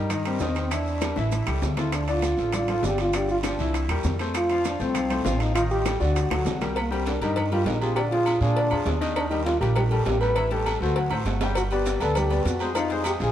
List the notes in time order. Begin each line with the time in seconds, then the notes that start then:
Already playing: G2 D#4
0.10 D#3 D#4 D#5, high bongo, high conga, low conga, high timbale, long guiro, claves, maracas
0.25 G3 C4 G4 A#4, high bongo, high conga, high timbale, maracas
0.39 E2 D#3 D#4 D#5, high bongo, low bongo, high conga, low timbale, short guiro, maracas
0.55 C4, high bongo, high conga, high timbale, short guiro, maracas
0.71 E3 D4 E4 E5, high bongo, high conga, high timbale, long guiro, claves, maracas
0.86 high conga, maracas
1.01 G3 G4 A#4, high bongo, high conga, high timbale, short guiro, claves, maracas
1.16 A1 E3 E4 E5, high bongo, short guiro, maracas
1.20 E4
1.32 high bongo, high conga, high timbale, long guiro, maracas
1.46 C#2 G3 G4 A4, high conga, high timbale, claves, maracas
1.62 D2, low bongo, high conga, low timbale, short guiro, maracas
1.77 F3 E4 F4 A4, low bongo, high conga, high timbale, short guiro, maracas
1.92 D4, high bongo, high conga, high timbale, long guiro, claves, maracas
2.08 D3 D4 F4 D5, high conga, high timbale, maracas
2.22 high bongo, high conga, high timbale, short guiro, maracas
2.37 A1 F3 F4 A4, high bongo, short guiro, maracas
2.52 D3 D4 F4 D5, high bongo, high conga, low conga, high timbale, long guiro, claves, maracas
2.68 F3 F4 A4, high bongo, high conga, low conga, high timbale, maracas
2.83 G1 D3 D4 G4 D5, high bongo, low bongo, high conga, low timbale, short guiro, maracas
2.98 F4, high bongo, high conga, high timbale, short guiro, maracas
3.13 D3 D4 G4 D5, high bongo, high conga, high timbale, long guiro, claves, maracas
3.29 F4, high conga, maracas
3.43 F3 D4 F4 G4, high bongo, high conga, high timbale, short guiro, claves, maracas
3.59 C2 E3 E4 E5, high bongo, high conga, short guiro, maracas
3.73 high bongo, high conga, high timbale, long guiro, maracas
3.88 E2 G3 G4 A#4, high bongo, high conga, high timbale, claves, maracas
4.04 F2, high bongo, low bongo, high conga, short guiro, maracas
4.19 A3 A4 C5, high bongo, high conga, high timbale, short guiro, maracas
4.34 F4, high bongo, high conga, high timbale, long guiro, claves, maracas
4.50 F3 F4 F5, high conga, high timbale, maracas
4.64 D4, high bongo, high conga, high timbale, short guiro, maracas
4.80 C2 A3 C4 A4 C5, high bongo, short guiro, maracas
4.94 F3 F4 F5, high bongo, high conga, low conga, high timbale, long guiro, claves, maracas
5.10 A3 A4 C5, high bongo, high conga, low conga, high timbale, maracas
5.24 A1 F3 F4 F5, high bongo, low bongo, high conga, low timbale, short guiro, maracas
5.40 D#4, high bongo, high conga, high timbale, short guiro, maracas
5.55 D#3 D#4 F4 D#5, high bongo, high conga, high timbale, long guiro, claves, maracas
5.71 G4, high conga, maracas
5.85 G3 G4 A4, high bongo, high conga, high timbale, short guiro, claves, maracas
6.00 D2 D3 D4 F#4 D5, high bongo, high conga, short guiro, maracas
6.16 high bongo, high conga, high timbale, long guiro, maracas
6.30 D2 F#3 F#4 A4, high bongo, high conga, high timbale, claves, maracas
6.45 C2, low bongo, high conga, low timbale, short guiro, maracas
6.61 G3 G4 A#4, low bongo, high conga, high timbale, short guiro, maracas
6.76 A#3, cowbell, high conga, low agogo, long guiro, claves
6.91 G3 C4 G4 A#4, high conga, low agogo
7.06 D4, cowbell, high conga, short guiro
7.21 G2 G3 D#4 G4 A#4, cowbell, high conga, low agogo, short guiro
7.36 cowbell, high conga, low conga, low agogo, long guiro, claves
7.52 G3 F4 G4 A#4, high conga, low conga, low agogo
7.66 A#1 D#4, cowbell, high conga, low timbale, short guiro
7.81 F3 F4 G4 G#4, high conga, low agogo, short guiro
7.96 D3 D4 G4 D5, cowbell, high conga, low agogo, long guiro, claves
8.11 F3 F4 G#4, cowbell, high conga
8.26 cowbell, high conga, low agogo, short guiro, claves
8.41 A#2 F3 D4 F4 G#4, high conga, short guiro
8.56 D3 D4 D5, cowbell, high conga, low agogo, long guiro
8.71 F2 F3 F4 G#4, high conga, low agogo, claves
8.85 D#2, cowbell, high conga, low timbale, short guiro
9.01 D#3 D#4 D#5, cowbell, high conga, low agogo, short guiro
9.15 D4, cowbell, high conga, low agogo, long guiro, claves
9.30 G3 D#4 G4 A#4, high conga, low agogo
9.45 F4, cowbell, high conga, short guiro
9.61 A#1 G3 G4 A#4, cowbell, low agogo, short guiro
9.76 G4, cowbell, high conga, low conga, low agogo, long guiro, claves
9.91 G3 G4 A4 A#4, high conga, low agogo
10.06 A1 G4, cowbell, high conga, low timbale, short guiro
10.21 G3 G4 A4 B4, low agogo, short guiro
10.36 E3 E4 E5, cowbell, high conga, low agogo, long guiro, claves
10.51 G3 G4 A4, cowbell, high conga
10.66 cowbell, high conga, low agogo, short guiro, claves
10.81 D2 A3 F#4 A4 C5, high conga, short guiro
10.96 F#3 F#4 F#5, cowbell, high conga, low agogo, long guiro
11.10 A1 A3 A4 C5, high conga, high timbale, low agogo, claves
11.25 G1, cowbell, high conga, low timbale, short guiro
11.41 G3 G4 G5, cowbell, low timbale, low agogo, short guiro
11.55 F#4, cowbell, low agogo, claves, maracas
11.71 B3 G4 B4 D5, high conga, low agogo, maracas
11.85 cowbell, high conga, short guiro, maracas
12.00 D2 B3 A4 B4 D5, cowbell, high conga, low agogo, short guiro, maracas
12.15 G4, cowbell, high conga, low conga, low agogo, long guiro, claves, maracas
12.30 B3 B4 D5, high conga, low agogo, maracas
12.45 F2 F#4, cowbell, high conga, short guiro, maracas
12.59 G#3 G#4 C5, low agogo, short guiro, maracas
12.75 F3 D#4 F4 F5, cowbell, high conga, low agogo, long guiro, claves, maracas
12.90 G#3 G#4 C5, cowbell, high conga, maracas
13.04 G4, cowbell, high conga, low agogo, short guiro, claves, maracas
13.20 A#1 F3 F4 G#4, high conga, short guiro, maracas